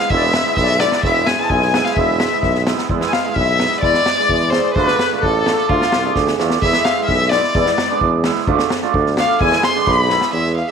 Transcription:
Already playing: accordion F5, violin F5
0.10 tuba E1, hammered dulcimer G#3 B3 E4, violin E5, accordion E5, kick
0.15 accordion D5
0.23 accordion E5
0.34 snare
0.46 hammered dulcimer G#3 B3 E4
0.55 tuba B1, accordion E5, violin E5, kick
0.62 accordion D5
0.68 accordion E5, snare
0.80 hammered dulcimer G#3 B3 E4, violin D5, accordion D5, snare
0.92 snare
1.03 tuba E1, hammered dulcimer G#3 B3 E4, accordion E5, violin E5, kick
1.25 accordion G#5, violin G#5, snare
1.39 hammered dulcimer G#3 B3 E4, violin A5
1.49 tuba B1, accordion G#5, violin G#5, kick
1.62 snare
1.73 hammered dulcimer G#3 B3 E4, snare
1.84 violin F5, snare
1.95 tuba E1, hammered dulcimer G#3 B3 E4, accordion E5, violin E5, kick
2.20 snare
2.31 hammered dulcimer G#3 B3 E4
2.43 tuba B1, kick, snare
2.55 snare
2.67 hammered dulcimer G#3 B3 E4, snare
2.78 snare
2.89 tuba E2, hammered dulcimer G#3 B3 E4, kick
3.01 snare
3.08 violin G#5
3.12 accordion F5, violin F5, snare
3.24 hammered dulcimer G#3 B3 E4
3.36 tuba B1, violin E5, accordion E5, kick
3.59 hammered dulcimer G#3 B3 E4, snare
3.72 snare
3.81 tuba E2, hammered dulcimer G#3 B3 E4, violin D5, accordion D5, kick
3.94 snare
4.06 snare
4.18 hammered dulcimer G#3 B3 E4
4.29 tuba E2, kick
4.50 hammered dulcimer G#3 B3 E4, violin C5, snare
4.74 tuba D2, hammered dulcimer A3 D4 F4, violin B4, accordion B4, kick
4.88 snare
4.99 snare
5.12 hammered dulcimer A3 D4 F4
5.21 tuba A1, violin A4, accordion A4, kick
5.46 hammered dulcimer A3 D4 F4, snare
5.69 tuba D2, hammered dulcimer A3 D4 F4, violin F4, accordion F4, kick
5.82 snare
5.92 tuba C2, snare
6.05 hammered dulcimer A3 D4 G#4
6.15 tuba D2, kick, snare
6.27 snare
6.38 tuba E2, hammered dulcimer A3 D4 F4, snare
6.50 snare
6.62 tuba E2, hammered dulcimer G#3 B3 E4, violin E5, accordion E5, kick
6.73 snare
6.85 violin F5, snare
6.97 hammered dulcimer G#3 B3 E4
7.02 violin E5, accordion F5
7.08 tuba B1, accordion E5, kick
7.29 hammered dulcimer G#3 B3 E4, violin D5, accordion D5, snare
7.44 snare
7.55 tuba E2, hammered dulcimer G#3 B3 E4, kick
7.66 snare
7.78 snare
7.90 hammered dulcimer G#3 B3 D4
8.01 tuba E2, kick
8.24 hammered dulcimer G#3 B3 E4, snare
8.35 snare
8.47 tuba D2, hammered dulcimer A3 D4 F4, kick
8.59 snare
8.70 snare
8.82 hammered dulcimer A3 D4 F4
8.94 tuba D2, kick
9.06 snare
9.17 hammered dulcimer A3 D4 F4, accordion F5, violin F5, snare
9.40 tuba E2, hammered dulcimer G#3 B3 E4, accordion G#5, violin G#5, kick
9.52 snare
9.63 accordion C6, violin C6, snare
9.75 hammered dulcimer G#3 B3 D4
9.87 tuba B1, accordion B5, violin C6, kick
9.98 violin B5
10.10 hammered dulcimer G#3 B3 E4, snare
10.21 snare
10.32 tuba E2, hammered dulcimer G#3 B3 E4, violin E5
10.57 violin F5
10.68 violin E5

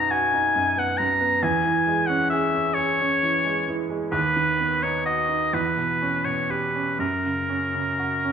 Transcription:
Already playing: grand piano B1 F#2 B3 D#4 F#4, oboe A#5
0.10 grand piano F#4, oboe G#5
0.34 grand piano D#4
0.56 grand piano F#2
0.77 grand piano B3, oboe F#5
0.98 grand piano F#2, oboe A#5
1.21 grand piano B3
1.43 grand piano E2, oboe G#5
1.65 grand piano E3
1.87 grand piano G#3
2.07 grand piano C#4, oboe F#5
2.30 grand piano G#4, oboe E5
2.55 grand piano C#4
2.74 oboe C#5
2.78 grand piano G#4
3.01 grand piano C#4
3.23 grand piano E3
3.45 grand piano G#3
3.68 grand piano E3
3.90 grand piano G#3
4.12 grand piano D#2, oboe B4
4.36 grand piano D#3
4.60 grand piano B3
4.83 grand piano D#4, oboe C#5
5.06 grand piano F#4, oboe D#5
5.29 grand piano D#4
5.54 grand piano E2, oboe B4
5.77 grand piano B2
6.02 grand piano C#4
6.25 grand piano B2, oboe C#5
6.50 grand piano G4, oboe B4
6.75 grand piano C#4
6.99 grand piano F#2, oboe A#4
7.26 grand piano C#3
7.49 grand piano C#4
7.75 grand piano C#3
7.99 grand piano F#4
8.24 grand piano C#4

